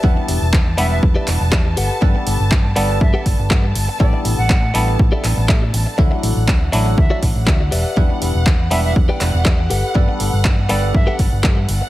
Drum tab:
HH |-o-o-o-o|-o-o-o-o|-o-o-o-o|-o-o-o-o|
CP |--x--xx-|--x---x-|--x--xx-|--x---x-|
BD |o-o-o-o-|o-o-ooo-|o-o-o-o-|o-o-ooo-|

HH |-o-o-o-o|-o-o-o-o|
CP |--x--xx-|--x---x-|
BD |o-o-o-o-|o-o-ooo-|